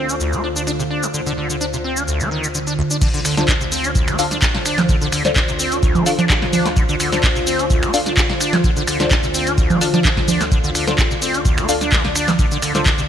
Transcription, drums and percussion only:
0.09 shaker
0.20 shaker
0.33 shaker
0.56 shaker
0.67 shaker
0.80 shaker
1.03 shaker
1.14 shaker
1.27 shaker
1.50 shaker
1.61 shaker
1.73 shaker
1.97 shaker
2.08 shaker
2.20 shaker
2.44 shaker
2.55 shaker
2.67 shaker
2.91 shaker
3.02 kick, closed hi-hat, crash, shaker
3.14 closed hi-hat, shaker
3.25 finger snap, open hi-hat, shaker
3.37 snare, closed hi-hat, shaker
3.48 kick, clap, closed hi-hat, shaker
3.61 closed hi-hat, shaker
3.72 open hi-hat, shaker
3.84 closed hi-hat, shaker
3.95 kick, closed hi-hat, shaker
4.08 finger snap, closed hi-hat, shaker
4.19 open hi-hat, shaker
4.31 snare, closed hi-hat, shaker
4.42 kick, clap, closed hi-hat, shaker
4.55 snare, closed hi-hat
4.66 finger snap, open hi-hat, shaker
4.78 snare, closed hi-hat, low conga, shaker
4.89 kick, closed hi-hat, shaker
5.01 closed hi-hat, shaker
5.12 finger snap, open hi-hat, shaker
5.25 snare, clap, closed hi-hat, shaker
5.36 kick, clap, closed hi-hat, shaker
5.48 closed hi-hat, shaker
5.59 open hi-hat, shaker
5.72 closed hi-hat, shaker
5.83 kick, closed hi-hat, shaker
5.95 closed hi-hat, low conga, shaker
6.06 open hi-hat, shaker
6.19 snare, closed hi-hat, low conga, shaker
6.30 kick, clap, closed hi-hat, shaker
6.42 snare, closed hi-hat
6.53 open hi-hat, low conga, shaker
6.66 snare, closed hi-hat, shaker
6.77 kick, closed hi-hat, shaker
6.89 closed hi-hat, shaker
7.00 finger snap, open hi-hat, shaker
7.12 snare, closed hi-hat, shaker
7.23 kick, clap, closed hi-hat, shaker
7.36 closed hi-hat, shaker
7.47 open hi-hat, shaker
7.59 closed hi-hat, shaker
7.70 kick, closed hi-hat, shaker
7.83 finger snap, closed hi-hat, shaker
7.94 open hi-hat, shaker
8.06 snare, closed hi-hat, shaker
8.17 kick, clap, closed hi-hat, shaker
8.30 snare, closed hi-hat
8.41 finger snap, open hi-hat, shaker
8.53 snare, closed hi-hat, low conga, shaker
8.64 kick, closed hi-hat, shaker
8.77 closed hi-hat, shaker
8.87 finger snap, open hi-hat, shaker
9.00 snare, clap, closed hi-hat, shaker
9.11 kick, clap, closed hi-hat, shaker
9.23 closed hi-hat, shaker
9.34 open hi-hat, shaker
9.47 closed hi-hat, shaker
9.58 kick, closed hi-hat, shaker
9.70 closed hi-hat, low conga, shaker
9.81 open hi-hat, shaker
9.94 snare, closed hi-hat, low conga, shaker
10.05 kick, clap, closed hi-hat, shaker
10.17 kick, snare, closed hi-hat
10.28 open hi-hat, low conga, shaker
10.41 snare, closed hi-hat, shaker
10.52 kick, closed hi-hat, shaker
10.64 closed hi-hat, shaker
10.75 finger snap, open hi-hat, shaker
10.87 snare, closed hi-hat, shaker
10.98 kick, clap, closed hi-hat, shaker
11.11 closed hi-hat, shaker
11.22 open hi-hat, shaker
11.34 closed hi-hat, shaker
11.45 kick, closed hi-hat, shaker
11.58 finger snap, closed hi-hat, shaker
11.69 open hi-hat, shaker
11.81 snare, closed hi-hat, shaker
11.92 kick, clap, closed hi-hat, shaker
12.05 snare, closed hi-hat
12.16 finger snap, open hi-hat, shaker
12.28 snare, closed hi-hat, low conga, shaker
12.39 kick, closed hi-hat, shaker
12.51 closed hi-hat, shaker
12.62 finger snap, open hi-hat, shaker
12.75 snare, clap, closed hi-hat, shaker
12.86 kick, clap, closed hi-hat, shaker
12.98 closed hi-hat, shaker

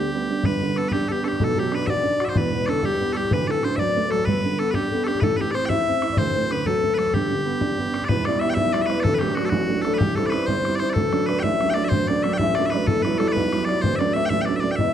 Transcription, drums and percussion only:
0.44 bodhran
0.61 bodhran
0.76 bodhran
0.91 bodhran
1.09 bodhran
1.24 bodhran
1.33 bodhran
1.40 bodhran
1.56 bodhran
1.72 bodhran
1.87 bodhran
2.04 bodhran
2.20 bodhran
2.28 bodhran
2.36 bodhran
2.53 bodhran
2.68 bodhran
2.83 bodhran
3.00 bodhran
3.15 bodhran
3.24 bodhran
3.31 bodhran
3.48 bodhran
3.63 bodhran
3.78 bodhran
3.96 bodhran
4.12 bodhran
4.19 bodhran
4.27 bodhran
4.44 bodhran
4.59 bodhran
4.74 bodhran
4.91 bodhran
5.07 bodhran
5.15 bodhran
5.22 bodhran
5.40 bodhran
5.55 bodhran
5.70 bodhran
5.87 bodhran
6.02 bodhran
6.10 bodhran
6.17 bodhran
6.34 bodhran
6.51 bodhran
6.66 bodhran
6.83 bodhran
6.99 bodhran
7.07 bodhran
7.14 bodhran
7.32 bodhran
7.61 bodhran
7.79 bodhran
7.94 bodhran
8.02 bodhran
8.09 bodhran
8.25 bodhran
8.41 bodhran
8.57 bodhran
8.74 bodhran
8.90 bodhran
9.05 bodhran
9.21 bodhran
9.37 bodhran
9.52 bodhran
9.85 bodhran
10.01 bodhran
10.18 bodhran
10.32 bodhran
10.48 bodhran
10.65 bodhran
10.80 bodhran
10.96 bodhran
11.13 bodhran
11.29 bodhran
11.44 bodhran
11.61 bodhran
11.76 bodhran
11.92 bodhran
12.08 bodhran
12.24 bodhran
12.39 bodhran
12.55 bodhran
12.72 bodhran
12.88 bodhran
13.05 bodhran
13.20 bodhran
13.37 bodhran
13.53 bodhran
13.69 bodhran
13.84 bodhran
14.01 bodhran
14.16 bodhran
14.30 bodhran
14.47 bodhran
14.63 bodhran
14.79 bodhran

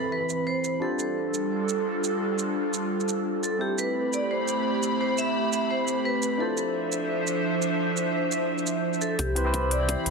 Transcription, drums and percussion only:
0.30 shaker
0.64 shaker
0.99 shaker
1.34 shaker
1.69 shaker
2.04 shaker
2.39 shaker
2.74 shaker
3.00 shaker
3.09 shaker
3.44 shaker
3.78 shaker
4.13 shaker
4.48 shaker
4.83 shaker
5.18 shaker
5.53 shaker
5.88 shaker
6.23 shaker
6.57 shaker
6.92 shaker
7.27 shaker
7.62 shaker
7.97 shaker
8.32 shaker
8.58 shaker
8.67 shaker
8.93 shaker
9.01 shaker
9.19 kick, closed hi-hat
9.36 closed hi-hat
9.54 kick, closed hi-hat
9.71 closed hi-hat
9.89 kick, closed hi-hat
10.06 closed hi-hat

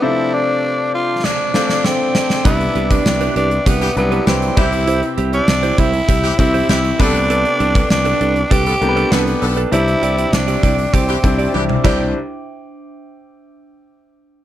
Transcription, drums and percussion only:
1.24 snare
1.54 snare
1.69 snare
1.84 snare
2.15 snare
2.30 snare
2.45 kick, closed hi-hat
2.61 closed hi-hat
2.75 closed hi-hat
2.91 kick, closed hi-hat
3.06 snare, tambourine
3.21 closed hi-hat
3.36 closed hi-hat
3.51 closed hi-hat
3.66 kick, closed hi-hat
3.81 closed hi-hat
3.97 closed hi-hat
4.12 closed hi-hat
4.27 snare, tambourine
4.42 closed hi-hat
4.57 kick, crash
4.72 closed hi-hat
4.88 closed hi-hat
5.03 closed hi-hat
5.18 closed hi-hat
5.33 closed hi-hat
5.48 snare, tambourine
5.63 closed hi-hat
5.78 kick, closed hi-hat
5.93 closed hi-hat
6.09 kick, closed hi-hat
6.24 closed hi-hat
6.39 kick, closed hi-hat
6.54 closed hi-hat
6.69 snare, tambourine
6.85 closed hi-hat
6.99 kick, open hi-hat
7.15 closed hi-hat
7.30 closed hi-hat
7.45 closed hi-hat
7.60 closed hi-hat
7.75 kick, closed hi-hat
7.90 snare, tambourine
8.05 closed hi-hat
8.21 closed hi-hat
8.36 closed hi-hat
8.51 kick, closed hi-hat
8.66 closed hi-hat
8.82 closed hi-hat
8.97 closed hi-hat
9.12 snare, tambourine
9.27 closed hi-hat
9.42 open hi-hat
9.57 closed hi-hat
9.72 closed hi-hat
9.88 closed hi-hat
10.03 closed hi-hat
10.18 closed hi-hat
10.33 snare, tambourine
10.48 closed hi-hat
10.63 kick, closed hi-hat
10.79 closed hi-hat
10.94 kick, closed hi-hat
11.09 closed hi-hat
11.24 kick, closed hi-hat
11.39 closed hi-hat
11.54 high tom
11.69 mid tom
11.85 kick, crash

